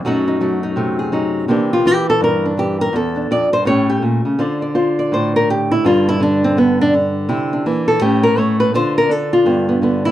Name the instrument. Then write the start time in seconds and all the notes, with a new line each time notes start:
nylon-string guitar
0.05 F#2 F#3 A3 D#4 F#4
0.28 D#4
0.41 F#3 A3
0.63 D#4
0.76 C3 A3
0.99 G#4
1.12 F#3 D#4
1.48 C3 E3 A#3 D4 G4
1.73 F4
1.86 E3 G4
2.10 A4
2.21 G2 A#4
2.46 D4
2.57 E3 G4
2.81 A#4
2.93 E2 A4
3.16 D4
3.31 F2 D5
3.53 G2 C5
3.65 A2 A3 C#4 G4 C#5
3.90 G4
4.02 A#2
4.25 C#3
4.39 D3 F4 C5 D5
4.62 D5
4.75 F4 C5
4.99 D5
5.12 A2 C5
5.36 A#4
5.50 G4
5.72 E4
5.85 G2 D3 G3 F4
6.09 E4
6.20 D3 D4
6.44 C4
6.57 D3 B3
6.81 D4
6.94 D3
7.29 C3 E4
7.53 D4
7.66 E3 A#3
7.88 A4
8.01 A2 A3 C#4 G4
8.23 A#4
8.38 A3 C#5
8.60 B4
8.74 D3 D4 F4 C5
8.98 A#4
9.09 D4 A4
9.33 F4
9.46 G2 B3
9.69 B3
9.82 D3 B3
10.05 B3 E4